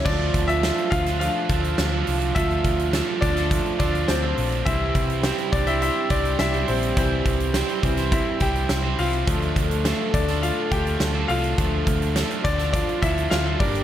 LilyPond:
<<
  \new Staff \with { instrumentName = "Grand piano" } { \time 4/4 \key d \minor \tempo 4 = 104 d''8. <f' e''>8. <f' f''>8 <f' f''>4. r8 | <f' e''>4. <d' d''>4 <d' d''>8 <c' c''>8. r16 | <e' e''>4. <d' d''>16 <e' e''>16 <e' e''>8 <d' d''>8 <e' e''>8 <c' c''>8 | c''4. r8 <e' e''>8 <g' g''>4 <f' f''>8~ |
<f' f''>4. <d' d''>8 <f' f''>8 <g' g''>4 <f' f''>8~ | <f' f''>4. <d' d''>8 <d' d''>8 <e' e''>8 <f' f''>8 <d' d''>8 | }
  \new Staff \with { instrumentName = "Grand piano" } { \time 4/4 \key d \minor <f a d'>2 <f a d'>8 r4. | <f a d'>2 <f a d'>8 r4. | <e g c'>8 r2. r8 | <e g c'>4. <e g c'>8 r2 |
<f a d'>1 | <f a d'>2.~ <f a d'>8 <g bes>8 | }
  \new Staff \with { instrumentName = "Overdriven electric guitar" } { \time 4/4 \key d \minor <d f d' f' a'>4 <f d' f' a'>8. <d' f' a'>8. <f d' f' a'>8. <d f d' f' a'>8. | <d f d' f' a'>4 <f d' f' a'>8. <d' f' a'>8. <f d' f' a'>8. <d f d' f' a'>8. | <c g c' e' c''>4 <g c' e' c''>8. <c' e' c''>8. <g c' e' c''>8. <c g c' e' c''>8. | <c g c' e' c''>4 <g c' e' c''>8. <c' e' c''>8. <g c' e' c''>8. <c g c' e' c''>8. |
<d f d' f' a'>4 <f d' f' a'>8. <d' f' a'>8. <f d' f' a'>8. <d f d' f' a'>8. | <d f d' f' a'>4 <f d' f' a'>8. <d' f' a'>8. <f d' f' a'>8. <d f d' f' a'>16 <g, d g bes d' bes'>8 | }
  \new Staff \with { instrumentName = "French horn section" } { \time 4/4 \key d \minor <f f'>1~ | <f f'>2.~ <f f'>8 r8 | <g g'>1~ | <g g'>2.~ <g g'>8 r8 |
<a a'>1~ | <a a'>4. r8 <f f'>4 r8 <g g'>8 | }
  \new Staff \with { instrumentName = "Picked electric bass" } { \clef bass \time 4/4 \key d \minor d,8 d,8. r16 d,8. r16 d,8 d,8 c,8 | d,8 d,8. r16 d,8. r16 d,8 d,8 bes,,8 | c,8 c,8. r16 c,8. r16 c,8 c,8 bes,,8 | c,8 c,8. r16 c,8. r16 c,8 c,8 c,8 |
d,8 d,8. r16 d,8. r16 d,8 d,8 c,8 | d,8 d,8. r16 d,8. r16 d,8 d,8 g,,8 | }
  \new DrumStaff \with { instrumentName = "Drums" } \drummode { \time 4/4 <cymc bd>8 <hh bd>16 hh16 <hh sn>16 hh16 <hh bd>16 <hh sn>16 hh8 <hh bd>16 hh16 <hh sn>8 hho16 hh16 | <hh bd>16 hh16 <hh bd>16 hh16 <hh sn>8 <hh bd>16 <hh sn>16 <hh bd>16 hh16 <hh bd>16 hh16 <hh sn>8 hho16 hh16 | <hh bd>8 <hh bd>16 hh16 <hh sn>16 hh16 <hh bd>16 hh16 hh8 <hh bd>16 hh16 <hh sn>16 hh16 hho16 hh16 | <hh bd>8 <hh bd>16 hh16 <hh sn>16 hh16 <hh bd>16 <hh sn>16 <hh bd>8 <hh bd>16 hh16 <hh sn>8 hho16 hh16 |
<hh bd>16 hh16 <hh bd>16 hh16 <hh sn>8 <hh bd>16 <hh sn>16 hh8 <hh bd>16 hh16 <hh sn>8 hho16 hh16 | <hh bd>8 <hh bd>16 hh16 <hh sn>16 hh16 <hh bd>16 <hh sn>16 <hh bd>16 hh16 <hh bd>16 hh16 <hh sn>8 <hho bd>16 hh16 | }
>>